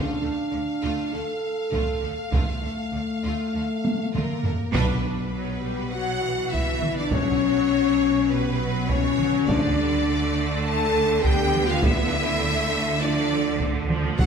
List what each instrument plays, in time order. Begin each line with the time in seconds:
Already playing: viola section A3, french horn section D4, violin section F4 F5
0.21 double bass section D2, cello section D3, viola section A3, violin section A4
0.52 double bass section D2, cello section D3, viola section A3, violin section D5
0.82 double bass section D2, cello section D3, viola section A3, violin section F4
1.12 double bass section D2, cello section D3, viola section A3, french horn section A4, violin section A4
1.71 double bass section D2, cello section D3, viola section A3, violin section F4, taiko
2.01 double bass section D2, cello section D3, viola section A3, violin section A4
2.32 double bass section D2, cello section D3, french horn section A3, viola section A3, violin section F4, taiko
2.62 double bass section D2, cello section D3, violin section A4
2.66 viola section A3
2.92 double bass section D2, cello section D3, viola section A3, violin section D5
3.23 double bass section D2, cello section D3, viola section A3, violin section F4
3.54 double bass section D2, cello section D3, viola section A3, violin section A4
3.85 taiko high
4.14 double bass section D2, cello section D3, viola section A3, french horn section A#3, violin section F4 A#4, taiko mid
4.44 double bass section D2, cello section D3, viola section A3, violin section A4, taiko low
4.73 double bass section B1, cello section B2, timpani B2, french horn section B3, viola section D4, violin section B4, taiko
5.34 viola section F#3
5.63 viola section G3
5.93 viola section F#3, french horn section F#4, violin section F#5
6.22 viola section E3
6.52 french horn section E4, violin section E5, taiko
6.83 taiko mid
6.96 french horn section D4, violin section D5
7.12 viola section F#3, french horn section C#4, violin section C#5, taiko
8.29 viola section G3, french horn section B3, violin section B4
8.60 viola section F#3
8.89 viola section E3, french horn section C#4, violin section C#5, taiko
9.18 viola section F#3, taiko mid
9.47 double bass section D2, cello section D3, viola section F3, french horn section D4, violin section D5, taiko
9.78 viola section G3
10.07 viola section A3
10.63 french horn section A4, violin section A5
11.22 viola section B3, french horn section G4, violin section G5, taiko
11.54 taiko mid
11.67 french horn section F4, violin section F5
11.83 french horn section E4, violin section E5, taiko
12.42 viola section A3
13.00 viola section F3, french horn section D4, violin section D5
13.59 viola section A3, taiko
13.89 viola section F3, taiko mid
14.19 double bass section B1, cello section B2, timpani B2, viola section F#3, french horn section F#4, violin section F#5, taiko